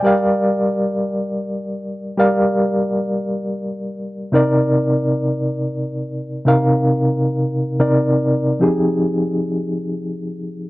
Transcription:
Already playing: G5
0.03 G3 G4 A#4 D5 F5
2.17 G3 G4 A#4 D5 F5
4.32 C3 C4 D#4 A#4 D5
6.45 C3 C4 D#4 A#4 F5
7.79 C3 C4 D#4 A#4 D5
8.59 F3 C4 D#4 G4 G#4

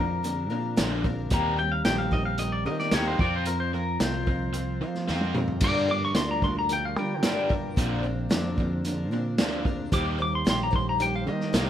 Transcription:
Already playing: F2 F3 C4 D4 A#4
0.00 A#2 D3
0.23 A#2 D3 F3 C4 D4 A#4, closed hi-hat
0.50 A#2 D3 F3 C4 D4 A#4
0.77 A#1 A#2 D3 F3 C4 D4 A#4, snare, closed hi-hat
1.04 A#2 D3 F3 C4 D4 A#4, kick
1.30 D#2 D#3 G3 A#3 C4 G4 A#4 A#5, kick, closed hi-hat
1.59 D#3 G3 C4 G4 A#4 G5
1.72 F5
1.85 A#1 D#3 G3 C4 G4 A#4 G5, snare, closed hi-hat
1.98 F5
2.11 D#3 G3 C4 G4 A#4 D#5, kick
2.25 F5
2.38 D#3 G3 C4 G4 A#4 D#5, closed hi-hat
2.52 D5
2.65 D#3 G3 C4 G4 A#4 D#5
2.79 D5, snare
2.91 D#2 D#3 G3 A#3 C4 G4 A#4 C#5, snare, closed hi-hat
3.08 C5
3.19 F2 F3 C4 F4 A#4 D5, kick
3.36 C5
3.46 F3 C4 F4 A#4, closed hi-hat
3.60 C5
3.73 F3 C4 F4 A#4
4.00 C2 F3 C4 F4 A#4 C5, snare, closed hi-hat
4.27 F3 C4 F4 A#4, kick
4.53 F3 C4 F4 A#4, closed hi-hat
4.81 F3 C4 F4 A#4
4.95 snare
5.07 F2 F3 C4 F4 A#4, snare
5.21 high tom
5.35 F3 C4 F4 A#4, mid tom
5.48 floor tom
5.61 G2 D3 F3 G3 A#3 D4 F4 A#4 D6, kick, closed hi-hat, crash
5.88 G2 D3 F3 A#3 D4 A#4 D6
6.05 C#6
6.15 D2 G2 D3 F3 A#3 D4 A#4 C6, snare, closed hi-hat
6.31 A#5
6.42 G2 D3 F3 A#3 D4 A#4 C6, kick
6.59 A#5
6.69 G2 D3 F3 A#3 D4 A#4 G5, closed hi-hat
6.85 F5
6.96 G2 D3 F3 G3 A#3 D4 A#4 G5
7.23 G2 D3 F3 G3 A#3 D4 A#4, snare, closed hi-hat
7.49 G2 D3 F3 A#3 D4 A#4, kick
7.74 A#1 A#2 D3 F3 A#3 C4 D4 A#4 C5, kick, closed hi-hat
8.03 A#2 D3 F3 C4 D4 A#4
8.29 F2 A#2 D3 F3 C4 D4 A#4, snare, closed hi-hat
8.57 A#2 D3 F3 C4 D4 A#4, kick
8.84 A#2 D3 F3 C4 D4 A#4, closed hi-hat
9.11 A#2 D3 F3 C4 D4 A#4
9.38 D2 A#2 D3 F3 C4 D4 A#4, snare, closed hi-hat
9.65 A#2 D3 F3 C4 D4 A#4, kick
9.91 D#2 D#3 G3 A#3 D#4 G4 C5 D6, kick, closed hi-hat
10.19 D#3 G3 A#3 G4 C5 D6
10.35 C6
10.45 A#1 D#3 G3 A#3 G4 C5, snare, closed hi-hat
10.50 C6
10.63 A#5
10.71 D#3 G3 A#3 G4 C5, kick
10.76 C6
10.89 A#5
10.99 D#3 G3 A#3 G4 C5 G5, closed hi-hat
11.16 F5
11.26 D#3 G3 A#3 G4 C5 D#5
11.40 snare
11.52 C2 D#3 G3 A#3 G4 C5, snare, closed hi-hat

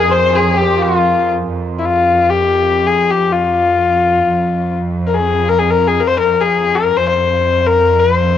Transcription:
Already playing: F2 G#4 A#4
0.10 C5
0.17 C5
0.25 C5
0.31 G#4 C5
0.35 G#4 C5
0.45 C5
0.53 G4 C5
0.57 G4
0.62 C5
0.77 F4
0.82 F4
1.49 F2
1.79 E4
1.86 F4
2.30 G4
2.87 G#4
3.11 G4
3.33 F4
4.23 F2
5.07 A#4
5.15 G#4
5.49 A#4
5.59 G#4
5.71 A#4
5.88 G#4
6.00 A#4
6.08 C5
6.19 A#4
6.41 G#4
6.75 A#4
6.97 F2 C5
7.09 C5
7.67 A#4
8.00 C5

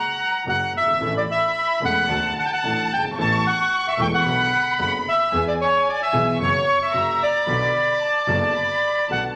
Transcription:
Already playing: F#5 A#5
0.46 F#1 F#2 C#3 F#3 A#3 F#4 F#5
0.74 G1 E5
0.81 F#1
0.88 G1
0.94 G#1
1.00 A1 A2 E3 A3 C#4 A4 B5
1.17 D5
1.31 E5
1.81 E1 E2 E3 A3 C#4 A4 F#5
2.08 D2 D3 F#3 A3 D4 A4 A5
2.39 F#5
2.46 G5
2.53 F#5
2.64 A1 A2 F#3 A3 D4 A4
2.90 G1 G5
2.97 F#1
3.05 G1
3.11 G#1
3.18 A1 A2 E3 A3 B3 A4 A5 C#6
3.47 F#5
3.88 E5
3.99 E1 E2 E3 A3 B3 A4 G5
4.14 F#5
4.25 B1 B2 D3 F#3 B3 F#4 B5
4.79 F#1 F#2 D3 F#3 B3 F#4 F#5
5.09 E5
5.32 E2 E3 G#3 B3 G#4 G#5
5.48 D5
5.61 C#5
5.89 D5
6.03 E5
6.13 B1 B2 E3 G#3 B3 G#4
6.39 F#1 F#2 C#3 F#3 B3 F#4 C#5 C#6
6.83 E5
6.93 F#1 F#2 C#3 F#3 A#3 F#4 A#5
7.23 D5
7.46 B1 B2 D3 F#3 B3 F#4 B5
8.01 A5
8.27 F#1 F#2 D3 F#3 B3 F#4
8.55 B5
9.09 B1 B2 D3 F#3 B3 F#4 F#5 A5

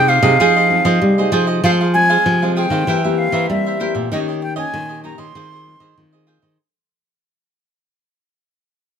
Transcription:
Already playing: C3 C4 D#4 G#4 G5
0.08 F4 G#4 C5 D#5 F5
0.23 C3 C4 D#4 G#4 C5 D#5
0.40 F3 C4 D#4 F4 G#4 C5 D#5
0.56 G#4 C5 D#5
0.70 C4 D#4 G#4
0.85 F3 G#4 C5 D#5
1.02 C3 G3
1.18 C4 D#4 G#4 C5 D#5
1.32 F3 F4 G#4 C5 D#5
1.47 G#4 C5 D#5
1.64 F3 G#3 C4 F4 G#4 C5 F5
1.81 G#4 C5 F5
1.94 G#3 C4 G#4 G#5, muted cavaquinho stroke
2.10 G#4 C5 F5
2.26 C3 F3
2.42 G#3 C4 G#4 C5 F5
2.57 F4 G#4 C5 F5 G5
2.70 D#3 G#4 C5 F5
2.87 E3 A#3 C4 E4 G4 A#4 C5 E5
3.04 A#3 C4 G4 A#4 C5 E5
3.18 F5
3.32 E3 A#4 C5 E5
3.50 E3 G3 A#3 C4 G4 E5
3.66 A#4 C5 E5
3.80 A#3 C4 E4 G4 A#4 C5 E5
3.94 A#2 A#4 C5 E5
4.12 D#3 A#3 C#4 D#4 G4 C#5 D#5
4.28 G4 C#5 D#5
4.42 G5, muted cavaquinho stroke
4.56 A#3 C#4 G4 C#5 D#5 G#5
4.74 A#2 D#3
4.89 G4 C#5 D#5
5.04 A#3 C#4 D#4 G4 C#5 D#5 A#5
5.18 D#3 G4 C#5 D#5 C6
5.35 D#3 G#3 C4 F4 G#4 C5 D#5
5.52 G#4 C5 D#5
5.66 G#3 C4 F4
5.80 D#3 G#4 C5 D#5
5.98 D#3 G#3 C4 F4
6.12 G#4 C5 D#5
6.27 F4 G#4 C5 D#5
6.42 D#3 G#4 C5 D#5

